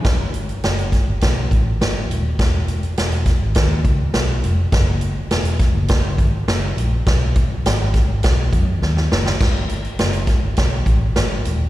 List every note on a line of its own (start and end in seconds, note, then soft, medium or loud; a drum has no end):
0.05 0.51 G1 medium
0.05 kick loud
0.05 snare medium
0.05 closed hi-hat medium
0.34 closed hi-hat medium
0.49 closed hi-hat soft
0.64 0.99 F#1 medium
0.64 snare medium
0.64 closed hi-hat medium
0.79 closed hi-hat medium
0.92 kick medium
0.92 snare soft
0.92 closed hi-hat medium
1.08 1.19 G1 medium
1.21 1.46 B1 medium
1.21 kick medium
1.21 snare loud
1.21 closed hi-hat medium
1.51 1.75 A1 medium
1.51 kick medium
1.51 closed hi-hat medium
1.81 2.04 G1 medium
1.81 snare loud
1.81 closed hi-hat medium
2.10 2.33 D#1 medium
2.10 closed hi-hat medium
2.39 2.86 E1 loud
2.39 kick loud
2.39 snare medium
2.39 closed hi-hat medium
2.68 closed hi-hat medium
2.83 closed hi-hat soft
2.98 3.32 E1 medium
2.98 snare medium
2.98 closed hi-hat medium
3.12 closed hi-hat medium
3.26 kick medium
3.26 snare soft
3.26 closed hi-hat medium
3.42 3.53 G#1 medium
3.55 3.79 D#2 medium
3.55 kick loud
3.55 snare loud
3.55 closed hi-hat medium
3.85 4.08 C#2 medium
3.85 kick medium
3.85 closed hi-hat medium
4.14 4.38 B1 medium
4.14 snare loud
4.14 closed hi-hat medium
4.44 4.67 F1 medium
4.44 closed hi-hat medium
4.72 5.19 F#1 loud
4.72 kick loud
4.72 snare medium
4.72 closed hi-hat medium
5.01 closed hi-hat medium
5.31 5.66 E1 medium
5.31 snare loud
5.31 closed hi-hat medium
5.45 closed hi-hat medium
5.59 kick medium
5.59 snare soft
5.59 closed hi-hat medium
5.75 6.19 F#1 medium
5.88 kick medium
5.88 snare loud
5.88 closed hi-hat medium
6.18 6.42 G#1 medium
6.18 kick medium
6.18 closed hi-hat medium
6.48 6.71 F#1 medium
6.48 snare loud
6.48 closed hi-hat medium
6.77 7.00 A#1 medium
6.77 closed hi-hat medium
7.07 7.53 B1 loud
7.07 kick loud
7.07 snare medium
7.07 closed hi-hat medium
7.36 kick medium
7.36 closed hi-hat medium
7.65 8.00 G#1 medium
7.65 snare loud
7.65 closed hi-hat loud
7.94 kick medium
7.94 snare soft
7.94 closed hi-hat medium
8.09 8.20 G#1 medium
8.23 8.54 B1 medium
8.23 kick medium
8.23 snare loud
8.23 closed hi-hat medium
8.53 8.76 F#2 medium
8.53 kick medium
8.53 closed hi-hat medium
8.82 9.05 D#2 medium
8.82 snare medium
8.97 snare medium
9.11 9.34 F#1 medium
9.11 snare medium
9.26 snare medium
9.41 9.87 G1 medium
9.41 kick loud
9.41 snare medium
9.41 crash medium
9.69 closed hi-hat medium
9.85 closed hi-hat soft
9.99 10.33 F#1 medium
9.99 snare loud
9.99 closed hi-hat medium
10.13 closed hi-hat medium
10.27 kick medium
10.27 snare soft
10.27 closed hi-hat medium
10.43 10.55 G1 medium
10.57 10.81 B1 medium
10.57 kick medium
10.57 snare loud
10.57 closed hi-hat medium
10.86 11.10 A1 medium
10.86 kick medium
10.86 closed hi-hat medium
11.16 11.39 G1 medium
11.16 snare loud
11.16 closed hi-hat medium
11.45 11.69 D#1 medium
11.45 closed hi-hat medium